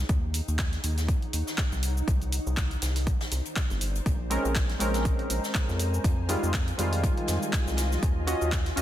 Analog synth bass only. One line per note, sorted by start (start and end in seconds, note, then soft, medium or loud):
0.09 0.41 D#2 loud
0.48 0.78 D#2 medium
0.84 1.15 D#2 medium
1.33 1.43 D#2 medium
1.72 2.02 C2 loud
2.08 2.39 C2 loud
2.46 2.77 C2 medium
2.82 3.14 C2 medium
3.32 3.41 C2 medium
3.70 4.01 G1 loud
4.06 4.38 A#1 loud
4.45 4.75 A#1 loud
4.80 5.12 A#1 medium
5.30 5.39 A#1 medium
5.69 5.99 F2 loud
6.04 6.36 F2 loud
6.43 6.73 F2 medium
6.79 7.10 F2 medium
7.28 7.38 F2 medium
7.67 7.97 C2 loud
8.03 8.34 D#2 loud
8.41 8.72 D#2 loud
8.77 8.82 D#2 medium